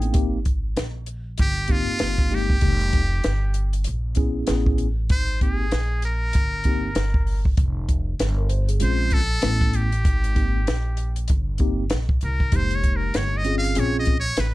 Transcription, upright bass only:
Already playing: A1
0.15 G#1
0.77 A#1
1.39 G1
1.88 muted upright bass stroke
2.01 G1
2.62 F1
3.26 G1
3.87 A#1
4.49 A1
5.10 G#1
5.72 A#1
6.35 G1
6.96 G1
7.58 F1
8.20 G1
8.81 A#1
9.44 A1
10.05 G#1
10.67 A#1
11.30 G1
11.92 A#1
12.23 C2
12.53 F1
13.15 G1
13.76 A#1
14.38 A1

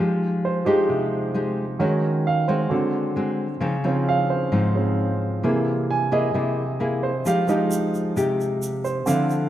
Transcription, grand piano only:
0.45 C5
0.65 F3 G#3 D#4 G4
1.79 D#3 F#3 C#4
2.27 F5
2.48 C5
2.70 D3 F#3 C4
3.84 C#3 F3 C4
4.09 F5
4.30 C5
4.75 C#3 F3 C4
5.44 C3 E3 A#3
5.91 G#5
6.13 D#5
7.03 C5
7.27 F5
7.48 F3 G#3 D#4
8.84 C5
9.06 D3 C4 F5

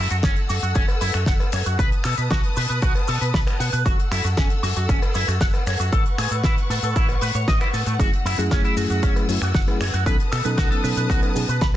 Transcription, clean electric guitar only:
0.11 F#4
0.24 C#4
0.49 F#4
0.63 F#4
0.75 C#4
1.01 E4
1.14 F#4
1.27 F#5
1.53 C#5
1.66 F#4
1.79 B4
2.04 A4
2.18 B4
2.31 F#4
2.57 B4
2.70 B4
2.83 F#4
3.08 A4
3.21 B4
3.34 B5
3.60 F#5
3.73 B4
3.85 F#4
4.11 E4
4.24 F#4
4.37 C#4
4.63 F#4
4.77 F#4
4.89 C#4
5.15 E4
5.28 F#4
5.41 F#5
5.67 C#5
5.80 F#4
5.93 A4
6.19 G#4
6.32 A4
6.44 E4
6.70 A4
6.84 A4
6.96 E4
7.22 B4
7.35 C#5
7.48 D#5
7.61 E4
7.74 A4
7.87 A3
8.00 F#4
8.26 E4
8.39 F#4
8.52 C#4
8.65 E4
8.77 F#4
8.90 F#4
9.03 C#4
9.42 F#4
9.55 F#5
9.81 C#5
9.94 F#4
10.06 B4
10.32 A4
10.45 B4
10.57 F#4
10.71 A4
10.84 B4
10.97 B4
11.10 F#4
11.49 B4
11.61 B5

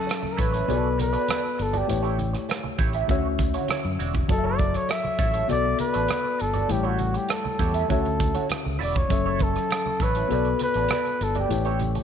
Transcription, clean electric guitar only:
0.06 muted clean electric guitar stroke
0.22 muted clean electric guitar stroke
0.37 E4 A4 C#5
0.52 E4 A4 C#5
0.68 F#4 A4 D5
0.98 muted clean electric guitar stroke
1.13 F#4 A4 D5
1.28 F#4 A4 D5
1.58 muted clean electric guitar stroke
1.73 F#4 A4 D5
1.88 muted clean electric guitar stroke
2.03 E4 G4 C#5
2.19 muted clean electric guitar stroke
2.33 muted clean electric guitar stroke
2.49 muted clean electric guitar stroke
2.64 muted clean electric guitar stroke
2.78 E4 G4 C#5
2.95 E4 G4 E5
3.10 E4 F#4 C#5
3.40 muted clean electric guitar stroke
3.54 E4 F#4 C#5
3.69 E4 F#4 C#5
3.84 muted clean electric guitar stroke
3.99 E4 F#4 D5
4.14 muted clean electric guitar stroke
4.28 muted clean electric guitar stroke
4.44 E4 A4 C#5
4.59 muted clean electric guitar stroke
4.74 muted clean electric guitar stroke
4.89 muted clean electric guitar stroke
5.04 muted clean electric guitar stroke
5.19 E4 A4 C#5
5.34 E4 A4 C#5
5.49 F#4 A4 D5
5.78 muted clean electric guitar stroke
5.94 F#4 A4 D5
6.09 F#4 A4 D5
6.39 muted clean electric guitar stroke
6.54 F#4 A4 D5
6.69 muted clean electric guitar stroke
6.83 E4 G4 C#5
6.99 muted clean electric guitar stroke
7.14 muted clean electric guitar stroke
7.29 muted clean electric guitar stroke
7.44 muted clean electric guitar stroke
7.59 E4 G4 C#5
7.74 E4 G4 E5
7.89 E4 F#4 C#5
8.20 muted clean electric guitar stroke
8.35 E4 F#4 C#5
8.49 muted clean electric guitar stroke
8.64 muted clean electric guitar stroke
8.79 E4 F#4 D5
8.95 muted clean electric guitar stroke
9.10 muted clean electric guitar stroke
9.26 E4 A4 C#5
9.40 muted clean electric guitar stroke
9.56 muted clean electric guitar stroke
9.72 muted clean electric guitar stroke
9.87 muted clean electric guitar stroke
10.02 E4 A4 C#5
10.16 E4 A4 C#5
10.31 F#4 A4 D5
10.61 muted clean electric guitar stroke
10.76 F#4 A4 D5
10.91 F#4 A4 D5
11.21 muted clean electric guitar stroke
11.36 F#4 A4 D5
11.51 muted clean electric guitar stroke
11.65 E4 G4 C#5
11.81 muted clean electric guitar stroke
11.96 muted clean electric guitar stroke

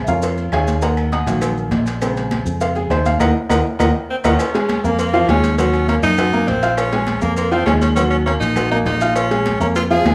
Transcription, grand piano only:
0.03 E5
0.08 F4 A#4 C#5 F5
0.53 G#4 C#5 F5 G#5
0.82 A#4 D#5 F#5 A#5
1.12 D#5 F#5 A#5 D#6
1.27 D#3 F#3 A#3
2.01 C#3 G#3 C4
2.61 F5
2.76 G#4
2.91 C5
3.06 F5
3.20 A#4 D#5 F#5
3.50 A#4 D#5 F#5
3.80 A#4 D#5 F#5
4.25 A#4 D#5 F#5
4.55 G#3 G#4 G#5
4.84 A#3 A#4 A#5
5.14 F3 F4 F5
5.29 G#3 G#4 G#5
5.58 F#3 F#4 F#5
5.88 A#3 A#4 A#5
6.18 F#4 F#5 F#6
6.33 A#3 A#4 A#5
6.63 F4 F5 F6
6.93 G#3 G#4 G#5
7.22 A#3 A#4 A#5
7.52 F3 F4 F5
7.67 G#3 G#4 G#5
7.97 F#3 F#4 F#5
8.26 A#3 A#4 A#5
8.56 F#4 F#5 F#6
8.71 A#3 A#4 A#5
9.01 F4 F5 F6
9.31 G#3 G#4 G#5
9.60 A#3 A#4 A#5
9.90 F3 F4 F5
10.06 G#3 G#4 G#5

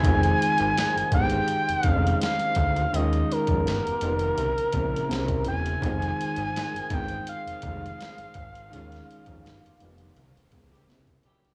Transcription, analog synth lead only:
Already playing: G#5
1.14 G5
1.86 F5
2.23 F5
2.95 D#5
3.32 A#4
5.48 G#5
6.93 G5
7.29 F5

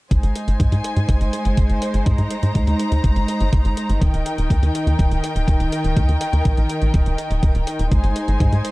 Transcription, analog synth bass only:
0.11 G#1
0.23 G#1
0.48 G#1
0.60 G#2
0.72 G#2
0.97 G#2
1.09 G#1
1.21 G#1
1.46 G#1
1.57 G#1
1.70 G#1
1.94 G#1
2.06 G#2
2.19 G#2
2.43 G#2
2.55 D#2
2.67 D#2
2.92 D#2
3.04 G#1
3.16 G#1
3.41 G#1
3.53 G#1
3.65 G#1
3.89 G#1
4.01 D#1
4.14 D#1
4.38 D#1
4.50 D#2
4.63 D#2
4.87 D#2
4.99 D#1
5.11 D#1
5.36 D#1
5.48 D#1
5.60 D#1
5.84 D#1
5.97 D#2
6.09 D#2
6.33 D#2
6.45 A#1
6.58 A#1
6.82 A#1
6.94 D#1
7.06 D#1
7.31 D#1
7.43 D#1
7.55 D#1
7.79 D#1
7.92 G#1
8.04 G#1
8.28 G#1
8.40 G#2
8.52 G#2

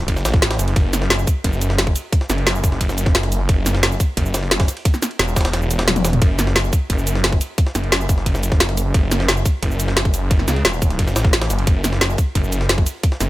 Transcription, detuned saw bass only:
0.08 F#1
0.25 A1
0.59 F#1
0.76 F#1
1.44 F#1
2.30 F#1
3.49 F#1
4.17 F#1
5.19 E1
6.22 F#1
6.90 F#1
7.75 F#1
8.94 F#1
9.63 F#1
10.14 F#1
10.48 C#2
10.65 E1
10.99 F#1
11.16 A1
11.50 F#1
11.67 F#1
12.35 F#1
13.21 F#1

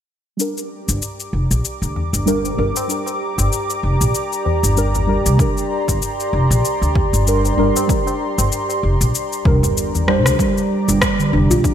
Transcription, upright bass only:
0.88 G1
1.33 F1
1.51 A#1
1.82 D2
2.13 G1
2.58 G1
3.38 G1
3.83 F1
4.01 A#1
4.63 G1
5.26 C2
5.88 G1
6.33 F1
6.50 A#1
6.82 D2
7.13 G1
7.58 G1
8.38 G1
8.83 F1
9.01 A#1
9.45 C2
9.63 G1
10.26 D2
10.88 G1
11.33 F1
11.51 A#1

